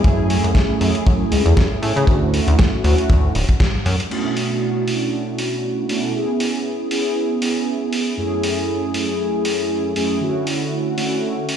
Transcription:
0.04 0.38 F#2 loud
0.04 0.78 A3 medium
0.04 0.78 C#4 medium
0.04 0.78 E4 medium
0.04 0.79 G#4 loud
0.04 kick loud
0.04 closed hi-hat medium
0.30 open hi-hat loud
0.44 0.52 F#2 medium
0.44 closed hi-hat medium
0.55 kick loud
0.55 snare loud
0.55 closed hi-hat medium
0.80 0.91 F#2 loud
0.80 1.79 A3 medium
0.80 1.80 C#4 medium
0.80 1.80 E4 medium
0.80 1.80 G#4 medium
0.80 open hi-hat medium
0.95 closed hi-hat medium
1.07 1.26 F#2 medium
1.07 kick loud
1.07 closed hi-hat medium
1.32 1.42 C#2 medium
1.32 open hi-hat loud
1.46 1.54 E2 loud
1.46 closed hi-hat medium
1.57 1.67 F#2 medium
1.57 kick loud
1.57 snare loud
1.57 closed hi-hat medium
1.82 1.93 A2 loud
1.82 2.05 A3 medium
1.82 2.05 C#4 medium
1.82 2.05 E4 medium
1.82 2.06 G#4 medium
1.82 open hi-hat medium
1.96 2.05 C#3 loud
1.96 closed hi-hat medium
2.07 2.41 D2 loud
2.07 2.81 A3 medium
2.07 2.81 C#4 medium
2.07 2.82 E4 medium
2.07 2.82 F#4 medium
2.07 kick loud
2.07 closed hi-hat medium
2.34 open hi-hat loud
2.47 2.56 D2 loud
2.47 closed hi-hat medium
2.59 kick loud
2.59 snare loud
2.59 closed hi-hat medium
2.84 2.94 D2 loud
2.84 3.32 A3 medium
2.84 3.32 C#4 medium
2.84 3.32 E4 medium
2.84 3.33 F#4 medium
2.84 open hi-hat medium
2.98 closed hi-hat medium
3.10 3.29 D2 medium
3.10 kick loud
3.10 closed hi-hat medium
3.35 3.45 D1 medium
3.35 open hi-hat loud
3.49 kick medium
3.49 closed hi-hat medium
3.60 kick loud
3.60 snare loud
3.60 closed hi-hat medium
3.86 3.96 F#2 loud
3.86 open hi-hat medium
4.00 closed hi-hat medium
4.10 4.84 B2 medium
4.10 4.85 A3 medium
4.10 4.85 C#4 medium
4.10 4.85 D4 medium
4.10 4.85 E4 medium
4.10 4.85 F#4 medium
4.10 crash medium
4.37 open hi-hat medium
4.87 5.86 B2 medium
4.87 5.86 A3 medium
4.87 5.87 C#4 medium
4.87 5.87 D4 medium
4.87 5.87 E4 medium
4.87 5.87 F#4 medium
4.87 open hi-hat medium
5.39 open hi-hat medium
5.89 6.12 B2 medium
5.89 6.12 A3 medium
5.89 6.12 C#4 medium
5.89 6.12 D4 medium
5.89 6.12 E4 medium
5.89 6.12 F#4 medium
5.89 open hi-hat medium
6.14 6.88 B3 medium
6.14 6.88 C#4 medium
6.14 6.88 E4 medium
6.14 6.89 G#4 medium
6.40 open hi-hat medium
6.91 7.39 B3 medium
6.91 7.39 C#4 medium
6.91 7.39 E4 medium
6.91 7.39 G#4 medium
6.91 open hi-hat medium
7.41 8.15 B3 medium
7.41 8.15 C#4 medium
7.41 8.16 E4 medium
7.41 8.16 G#4 medium
7.41 open hi-hat loud
7.93 open hi-hat medium
8.17 8.91 F#2 medium
8.17 8.91 A3 medium
8.17 8.92 C#4 medium
8.17 8.92 E4 medium
8.17 8.92 G#4 medium
8.43 open hi-hat loud
8.93 9.93 F#2 medium
8.93 9.93 A3 medium
8.93 9.93 C#4 medium
8.93 9.94 E4 medium
8.93 9.94 G#4 medium
8.93 open hi-hat medium
9.45 open hi-hat loud
9.96 10.19 F#2 medium
9.96 10.19 A3 medium
9.96 10.19 C#4 medium
9.96 10.19 E4 medium
9.96 10.19 G#4 medium
9.96 open hi-hat medium
10.20 10.95 D3 medium
10.20 10.95 A3 medium
10.20 10.95 C#4 medium
10.20 10.95 E4 medium
10.20 10.96 F#4 medium
10.47 open hi-hat medium
10.97 11.46 D3 medium
10.97 11.46 A3 medium
10.97 11.46 C#4 medium
10.97 11.46 E4 medium
10.97 11.46 F#4 medium
10.97 open hi-hat medium
11.49 open hi-hat medium

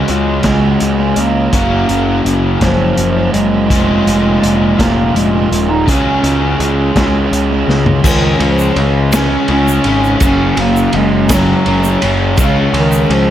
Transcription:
0.00 0.42 C#3 medium
0.00 0.43 G#3 medium
0.00 0.45 C#4 medium
0.00 0.45 F#4 medium
0.00 0.43 G#4 loud
0.08 0.39 C#2 medium
0.08 closed hi-hat medium
0.12 1.20 G#3 medium
0.43 0.75 C#2 medium
0.43 1.52 C#3 medium
0.43 1.52 G#3 medium
0.43 1.53 C#4 medium
0.43 1.52 F#4 medium
0.43 1.51 G#4 medium
0.43 kick medium
0.43 snare loud
0.43 closed hi-hat medium
0.80 1.12 C#2 medium
0.80 closed hi-hat medium
1.16 1.48 C#2 medium
1.16 1.53 A#3 medium
1.16 closed hi-hat medium
1.52 1.84 F#1 medium
1.52 2.59 F#2 medium
1.52 2.60 C#3 medium
1.52 2.60 F#3 medium
1.52 2.61 A#3 loud
1.52 2.32 A#3 loud
1.52 2.61 C#4 medium
1.52 2.60 F#4 medium
1.52 kick loud
1.52 closed hi-hat medium
1.89 2.20 F#1 medium
1.89 closed hi-hat medium
2.25 2.56 F#1 medium
2.25 closed hi-hat medium
2.60 2.92 F#1 medium
2.60 3.70 F#2 medium
2.60 3.69 C#3 medium
2.60 3.34 F3 medium
2.60 3.69 F#3 medium
2.60 3.69 A#3 medium
2.60 3.71 C#4 medium
2.60 3.68 F#4 medium
2.60 kick medium
2.60 snare loud
2.60 closed hi-hat medium
2.97 3.29 F#1 medium
2.97 closed hi-hat medium
3.33 3.71 F#1 medium
3.33 4.82 G#3 loud
3.33 closed hi-hat medium
3.69 4.01 F1 medium
3.69 4.77 A#2 medium
3.69 4.77 F3 medium
3.69 4.77 A#3 medium
3.69 4.78 C#4 loud
3.69 4.76 F4 loud
3.69 kick loud
3.69 closed hi-hat medium
4.07 4.38 F1 medium
4.07 closed hi-hat medium
4.43 4.74 F1 medium
4.43 closed hi-hat medium
4.77 5.10 F1 loud
4.77 5.86 A#2 medium
4.77 5.86 F3 medium
4.77 5.86 A#3 medium
4.77 5.17 A#3 loud
4.77 5.88 C#4 medium
4.77 5.85 F4 medium
4.77 kick medium
4.77 snare medium
4.77 closed hi-hat medium
5.15 5.46 F1 medium
5.15 5.51 G#3 loud
5.15 closed hi-hat medium
5.51 5.89 D#1 medium
5.51 5.71 G#3 medium
5.51 closed hi-hat medium
5.70 5.90 D#4 loud
5.87 6.18 C#2 medium
5.87 6.94 C#3 loud
5.87 6.94 G#3 loud
5.87 6.95 C#4 medium
5.87 7.33 C#4 loud
5.87 6.95 F#4 medium
5.87 6.95 G#4 loud
5.87 kick loud
5.87 closed hi-hat loud
6.23 6.54 C#2 medium
6.23 closed hi-hat medium
6.60 6.91 C#2 medium
6.60 closed hi-hat medium
6.96 7.27 C#2 loud
6.96 8.04 C#3 medium
6.96 8.04 G#3 medium
6.96 8.04 C#4 medium
6.96 8.04 F#4 medium
6.96 8.03 G#4 medium
6.96 kick medium
6.96 snare loud
6.96 closed hi-hat medium
7.32 7.63 C#2 medium
7.32 closed hi-hat medium
7.68 7.99 C#2 medium
7.68 snare medium
7.86 floor tom medium
8.04 8.34 C#2 medium
8.04 9.12 C#3 medium
8.04 8.39 D#3 medium
8.04 9.13 G#3 medium
8.04 9.14 C#4 loud
8.04 kick loud
8.04 crash loud
8.04 shaker medium
8.40 8.70 C#2 medium
8.40 8.79 F3 medium
8.40 ride medium
8.59 shaker medium
8.76 9.36 C#2 medium
8.76 9.16 G#3 medium
8.76 ride medium
9.12 9.47 C#3 loud
9.12 9.49 G#3 loud
9.12 9.49 C#4 loud
9.12 9.50 C#4 loud
9.12 snare loud
9.12 ride medium
9.12 shaker loud
9.48 9.79 C#2 medium
9.48 9.84 C#3 medium
9.48 9.85 G#3 loud
9.48 9.85 C#4 loud
9.48 10.19 C#4 loud
9.48 ride medium
9.68 shaker medium
9.84 10.15 G#1 medium
9.84 10.19 C#3 medium
9.84 10.22 G#3 medium
9.84 12.39 C#4 medium
9.84 ride medium
10.04 shaker soft
10.20 10.51 F#1 loud
10.20 11.29 F#2 medium
10.20 11.29 C#3 loud
10.20 11.30 F#3 loud
10.20 kick loud
10.20 ride loud
10.20 shaker loud
10.25 10.61 C#4 loud
10.57 10.87 F#1 medium
10.57 10.95 A#3 medium
10.57 ride medium
10.77 shaker medium
10.93 11.53 F#1 loud
10.93 11.35 G#3 loud
10.93 ride medium
11.29 11.65 F#2 loud
11.29 11.65 C#3 loud
11.29 11.66 F#3 loud
11.29 kick medium
11.29 snare loud
11.29 ride loud
11.29 shaker loud
11.34 12.14 F#3 loud
11.66 11.96 F#1 medium
11.66 12.01 F#2 medium
11.66 12.02 C#3 medium
11.66 12.02 F#3 medium
11.66 ride medium
11.84 shaker loud
12.02 12.39 F#1 medium
12.02 12.36 F#2 medium
12.02 12.37 C#3 medium
12.02 12.37 F#3 loud
12.02 ride medium
12.37 12.68 C#2 medium
12.37 13.30 C#3 loud
12.37 13.30 G#3 loud
12.37 13.30 C#4 loud
12.37 kick loud
12.37 ride loud
12.37 shaker loud
12.42 12.58 C#3 medium
12.73 13.04 C#2 loud
12.73 13.14 D#3 medium
12.73 ride medium
12.92 shaker medium
13.10 13.30 C#2 medium
13.10 13.30 F3 loud
13.10 ride medium

